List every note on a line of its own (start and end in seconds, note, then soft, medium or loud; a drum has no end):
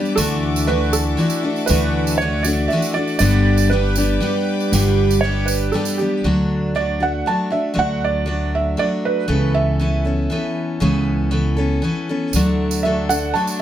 0.00 0.17 G3 soft
0.00 0.17 B3 soft
0.00 0.17 D4 medium
0.00 0.16 G4 soft
0.00 0.13 B4 medium
0.00 0.13 D5 medium
0.00 0.13 G5 medium
0.00 3.16 D6 medium
0.05 tambourine soft
0.15 1.14 D2 medium
0.15 0.70 D3 medium
0.15 0.66 E3 medium
0.15 0.67 A3 medium
0.15 0.68 D4 medium
0.15 0.68 F#4 medium
0.15 0.68 A4 medium
0.15 3.17 A4 medium
0.15 3.17 E5 medium
0.15 3.18 F#5 medium
0.15 tambourine medium
0.56 tambourine medium
0.67 1.16 E3 medium
0.67 1.17 A3 medium
0.67 1.19 D4 medium
0.67 1.19 F#4 medium
0.67 0.91 B4 medium
0.93 1.64 A4 medium
0.93 tambourine medium
1.17 1.43 E3 medium
1.17 1.43 A3 medium
1.17 1.43 D4 medium
1.17 1.42 F#4 medium
1.17 tambourine soft
1.30 tambourine medium
1.43 1.68 A3 soft
1.43 1.69 D4 soft
1.43 1.68 F#4 medium
1.56 tambourine soft
1.66 2.66 D2 medium
1.66 2.19 D3 medium
1.66 2.19 E3 medium
1.66 2.20 A3 medium
1.66 2.21 D4 medium
1.66 2.14 B4 medium
1.66 tambourine medium
1.70 2.20 F#4 medium
1.81 tambourine soft
2.07 tambourine medium
2.18 2.45 E3 medium
2.18 2.44 C#5 medium
2.22 2.46 A3 medium
2.22 2.45 D4 medium
2.22 2.44 F#4 medium
2.43 2.71 D4 medium
2.43 2.70 F#4 medium
2.43 2.70 D5 medium
2.43 tambourine medium
2.47 2.71 A3 soft
2.68 2.95 E5 loud
2.68 tambourine soft
2.72 2.96 E3 medium
2.72 2.96 A3 medium
2.72 2.96 D4 medium
2.72 2.94 F#4 medium
2.82 tambourine medium
2.94 3.20 A3 soft
2.94 3.21 D4 soft
2.94 3.21 F#4 soft
2.94 3.17 D5 medium
3.07 tambourine soft
3.19 4.17 G1 medium
3.19 3.71 G2 medium
3.19 3.71 D3 medium
3.19 3.70 G3 medium
3.19 3.71 B3 medium
3.19 3.72 D4 medium
3.19 3.71 G4 loud
3.19 6.22 B4 medium
3.19 3.72 D5 loud
3.19 6.22 D5 medium
3.19 6.22 G5 medium
3.19 6.21 D6 medium
3.19 tambourine medium
3.32 tambourine soft
3.58 tambourine medium
3.70 3.96 G3 medium
3.70 3.97 B3 medium
3.70 3.97 D4 medium
3.70 3.96 G4 medium
3.70 5.27 B4 medium
3.96 4.19 G3 soft
3.96 4.21 B3 soft
3.96 4.21 D4 medium
3.96 4.21 G4 medium
3.96 tambourine medium
4.20 4.72 G3 medium
4.20 4.72 B3 medium
4.20 4.74 D4 medium
4.20 4.73 G4 medium
4.20 tambourine soft
4.60 tambourine soft
4.72 5.69 G1 medium
4.72 5.23 G2 medium
4.72 5.23 D3 medium
4.72 5.22 G3 medium
4.72 5.23 B3 medium
4.72 5.24 D4 medium
4.72 5.24 G4 medium
4.72 tambourine medium
5.11 tambourine medium
5.21 5.73 G3 medium
5.21 5.73 B3 medium
5.21 5.48 C#5 medium
5.25 5.74 D4 medium
5.25 5.75 G4 medium
5.46 5.73 B4 medium
5.46 tambourine loud
5.72 5.99 G3 medium
5.72 5.99 B3 medium
5.72 5.99 D4 medium
5.72 5.99 A4 medium
5.72 tambourine soft
5.76 5.99 G4 medium
5.85 tambourine medium
5.98 6.24 B3 soft
5.98 6.25 D4 soft
5.98 6.22 G4 medium
5.98 6.25 G4 soft
5.98 tambourine soft
6.02 6.24 G3 soft
6.24 7.21 D2 medium
6.24 6.75 D3 medium
6.24 6.74 F#3 medium
6.24 6.75 A3 medium
6.24 6.75 D4 medium
6.24 6.75 F#4 medium
6.75 7.00 F#3 soft
6.75 7.01 A3 soft
6.75 7.00 D4 medium
6.75 6.99 F#4 medium
6.75 7.01 D5 medium
7.00 7.26 A3 soft
7.00 7.26 D4 soft
7.00 7.26 F#4 soft
7.00 7.28 F#5 medium
7.26 7.51 F#3 soft
7.26 7.52 A3 medium
7.26 7.51 D4 medium
7.26 7.49 F#4 medium
7.26 7.53 A5 medium
7.50 7.73 A3 soft
7.50 7.73 D4 soft
7.50 7.74 F#4 soft
7.50 7.78 E5 medium
7.74 8.74 D2 medium
7.74 8.26 D3 medium
7.74 8.24 F#3 medium
7.74 8.25 A3 medium
7.74 8.26 D4 medium
7.74 8.26 F#4 medium
7.79 8.01 F#5 medium
8.04 8.55 D5 medium
8.26 8.76 F#3 medium
8.26 8.77 A3 medium
8.26 8.77 D4 medium
8.26 8.78 F#4 medium
8.55 8.80 E5 medium
8.77 9.27 F#3 medium
8.77 9.28 A3 medium
8.77 9.29 D4 medium
8.77 9.28 F#4 medium
8.77 8.85 D5 medium
9.05 9.52 B4 medium
9.28 10.26 C#2 medium
9.28 9.79 C#3 medium
9.28 9.78 E3 medium
9.28 9.79 B3 medium
9.28 9.80 C#4 medium
9.28 9.81 A4 medium
9.54 10.77 E5 medium
9.79 10.05 E3 medium
9.79 10.06 B3 medium
9.79 10.04 C#4 medium
9.79 10.03 A4 medium
10.05 10.30 B3 soft
10.05 10.31 C#4 soft
10.05 10.30 A4 soft
10.30 10.80 E3 medium
10.30 10.80 B3 medium
10.30 10.81 C#4 medium
10.30 10.82 A4 medium
10.80 11.78 C#2 medium
10.80 11.31 C#3 medium
10.80 11.30 E3 medium
10.80 11.30 B3 medium
10.80 11.30 C#4 medium
10.80 11.32 A4 medium
11.31 11.57 E3 medium
11.31 11.57 B3 medium
11.31 11.57 C#4 medium
11.31 11.55 A4 medium
11.57 11.82 B3 soft
11.57 11.83 C#4 soft
11.57 11.82 A4 soft
11.82 12.08 E3 medium
11.82 12.08 B3 medium
11.82 12.09 C#4 medium
11.82 12.08 A4 medium
12.09 12.35 B3 soft
12.09 12.34 C#4 soft
12.09 12.34 A4 soft
12.33 13.31 D2 medium
12.33 13.62 D3 medium
12.33 12.85 D3 medium
12.33 12.84 F#3 medium
12.33 12.85 A3 medium
12.33 13.62 D4 medium
12.33 12.85 D4 medium
12.33 13.62 F#4 medium
12.33 13.62 A4 medium
12.33 12.86 A4 medium
12.33 tambourine medium
12.71 tambourine medium
12.83 13.10 F#3 medium
12.83 13.10 A3 medium
12.83 13.09 D4 medium
12.83 13.08 A4 medium
12.83 13.10 E5 medium
13.09 13.34 A3 soft
13.09 13.35 D4 soft
13.09 13.35 A4 medium
13.09 13.35 F#5 medium
13.09 tambourine medium
13.34 13.60 F#3 medium
13.34 13.60 A3 medium
13.34 13.59 D4 medium
13.34 13.58 A4 medium
13.34 13.60 A5 medium
13.34 tambourine soft
13.47 tambourine medium